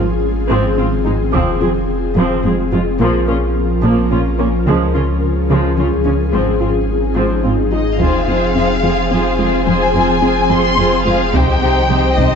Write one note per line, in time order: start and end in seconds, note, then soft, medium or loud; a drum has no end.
0.00 1.35 G#1 medium
0.00 1.33 D#3 medium
0.00 3.00 C4 medium
0.00 0.12 F4 medium
0.00 1.33 F4 medium
0.00 3.00 G#4 medium
0.50 0.58 G#2 medium
0.50 0.76 F3 soft
0.50 0.67 G#3 medium
0.50 0.76 C4 medium
0.78 0.86 G#2 soft
0.78 0.86 C4 soft
0.78 0.95 C4 soft
0.78 0.86 F4 soft
1.05 1.14 G#2 soft
1.05 1.13 G#3 soft
1.05 1.13 D#4 soft
1.05 1.22 F4 medium
1.33 3.02 F1 medium
1.33 1.41 F2 medium
1.33 1.59 F3 medium
1.33 6.33 F3 medium
1.33 1.50 F3 medium
1.33 1.59 C4 soft
1.33 6.30 F4 medium
1.33 taiko soft
1.61 1.69 F2 soft
1.61 1.69 C4 soft
1.61 1.78 F4 medium
1.61 1.69 G#4 soft
2.16 2.24 F2 medium
2.16 2.33 F3 medium
2.16 2.43 F3 medium
2.16 2.43 C4 medium
2.44 2.52 F2 soft
2.44 2.61 G#3 medium
2.44 2.53 C4 soft
2.44 2.53 G#4 soft
2.72 2.80 F2 soft
2.72 2.81 G#3 soft
2.72 2.89 F4 medium
2.72 2.81 F4 soft
3.00 4.68 A#1 medium
3.00 3.08 A#2 medium
3.00 3.26 F3 medium
3.00 3.17 A#3 medium
3.00 3.26 A#3 medium
3.00 6.34 C#4 medium
3.00 4.67 A#4 medium
3.27 3.35 A#2 soft
3.27 3.36 C#4 soft
3.27 3.36 F4 soft
3.27 3.45 A#4 medium
3.83 3.91 A#2 medium
3.83 4.10 F3 soft
3.83 4.00 A#3 medium
3.83 4.09 A#3 medium
4.11 4.19 A#2 soft
4.11 4.28 C#4 soft
4.11 4.19 C#4 soft
4.11 4.19 F4 soft
4.39 4.47 A#2 soft
4.39 4.47 A#3 soft
4.39 4.47 C#4 soft
4.39 4.55 A#4 medium
4.66 6.35 C#2 medium
4.66 4.83 C#3 medium
4.66 4.75 C#3 medium
4.66 4.93 F3 medium
4.66 4.92 G#3 soft
4.66 7.98 G#4 medium
4.66 taiko soft
4.94 5.03 C#3 soft
4.94 5.02 C#4 soft
4.94 5.11 C#4 soft
4.94 5.02 F4 soft
5.50 5.67 C#3 medium
5.50 5.58 C#3 soft
5.50 5.76 F3 soft
5.50 5.76 G#3 soft
5.77 5.86 C#3 soft
5.77 5.94 F3 soft
5.77 5.86 C#4 soft
5.77 5.86 F4 soft
5.92 taiko soft
6.05 6.14 C#3 soft
6.05 6.14 G#3 soft
6.05 6.22 C#4 soft
6.05 6.14 C#4 soft
6.33 7.99 G#1 medium
6.33 6.41 G#2 soft
6.33 6.59 F3 soft
6.33 7.96 F3 medium
6.33 6.50 G#3 medium
6.33 6.59 C4 soft
6.33 7.98 C4 medium
6.33 8.01 D#4 medium
6.61 6.69 G#2 soft
6.61 6.69 C4 soft
6.61 6.78 F4 soft
6.61 6.69 F4 soft
7.16 7.25 G#2 soft
7.16 7.42 F3 soft
7.16 7.33 G#3 medium
7.16 7.42 C4 soft
7.44 7.52 G#2 soft
7.44 7.52 C4 soft
7.44 7.61 C4 soft
7.44 7.52 F4 soft
7.72 7.80 G#2 soft
7.72 7.80 G#3 soft
7.72 7.80 D#4 soft
7.72 7.89 F4 soft
7.72 7.98 D#5 soft
7.99 11.35 F1 medium
7.99 8.08 F2 soft
7.99 11.29 F3 medium
7.99 8.17 F3 medium
7.99 11.29 C4 medium
7.99 8.27 C4 soft
7.99 8.27 F4 soft
7.99 11.29 G#4 medium
7.99 8.26 G#4 soft
7.99 11.29 C5 medium
7.99 8.27 C5 soft
7.99 9.67 F5 medium
7.99 taiko soft
8.27 8.36 F2 soft
8.27 8.55 C4 soft
8.27 8.55 F4 soft
8.27 8.54 G#4 soft
8.27 8.54 C5 soft
8.55 8.63 F2 soft
8.55 8.72 C4 soft
8.55 8.83 C4 soft
8.55 8.83 F4 soft
8.55 8.82 G#4 soft
8.55 8.82 C5 soft
8.83 8.92 F2 soft
8.83 9.00 F3 medium
8.83 9.11 C4 soft
8.83 9.11 F4 soft
8.83 9.09 G#4 soft
8.83 9.09 C5 soft
9.10 9.19 F2 soft
9.10 9.28 C4 medium
9.10 9.38 C4 soft
9.10 9.38 F4 soft
9.10 9.37 G#4 soft
9.10 9.38 C5 soft
9.39 9.47 F2 soft
9.39 9.56 G#3 medium
9.39 9.66 C4 soft
9.39 9.66 F4 soft
9.39 9.65 G#4 soft
9.39 9.65 C5 soft
9.66 9.75 F2 soft
9.66 9.83 F3 medium
9.66 9.93 C4 soft
9.66 9.93 F4 soft
9.66 9.93 G#4 soft
9.66 9.93 C5 soft
9.66 10.48 G#5 medium
9.94 10.02 F2 soft
9.94 10.21 C4 soft
9.94 10.21 F4 soft
9.94 10.21 G#4 soft
9.94 10.21 C5 soft
10.22 10.31 F2 soft
10.22 10.39 C4 medium
10.22 10.49 C4 soft
10.22 10.49 F4 soft
10.22 10.49 G#4 soft
10.22 10.49 C5 soft
10.50 10.59 F2 medium
10.50 10.67 F3 medium
10.50 10.77 C4 soft
10.50 10.77 F4 soft
10.50 10.77 G#4 soft
10.50 10.77 C5 soft
10.50 11.06 C6 medium
10.78 10.86 F2 medium
10.78 10.94 C4 medium
10.78 11.05 C4 soft
10.78 11.05 F4 soft
10.78 11.04 G#4 medium
10.78 11.04 C5 medium
11.05 11.14 F2 medium
11.05 11.22 G#3 medium
11.05 11.33 C4 soft
11.05 11.33 F4 soft
11.05 11.33 G#4 soft
11.05 11.31 C5 soft
11.05 11.33 F5 medium
11.32 12.35 C2 medium
11.32 11.50 C3 medium
11.32 11.42 C3 medium
11.32 12.35 D#3 medium
11.32 11.61 C4 medium
11.32 12.35 D#4 medium
11.32 11.61 D#4 medium
11.32 11.60 G4 soft
11.32 12.35 G4 medium
11.32 11.59 C5 medium
11.32 12.35 C5 medium
11.32 12.17 G5 medium
11.32 taiko medium
11.61 11.70 C3 medium
11.61 11.89 C4 soft
11.61 11.89 D#4 soft
11.61 11.88 G4 soft
11.61 11.88 C5 soft
11.89 11.98 C3 medium
11.89 12.06 G3 soft
11.89 12.17 C4 soft
11.89 12.17 D#4 soft
11.89 12.16 G4 soft
11.89 12.17 C5 soft
12.17 12.34 C3 medium
12.17 12.25 C3 medium
12.17 12.35 C4 soft
12.17 12.35 D#4 soft
12.17 12.35 G4 soft
12.17 12.35 C5 soft
12.17 12.35 D#5 medium
12.17 taiko medium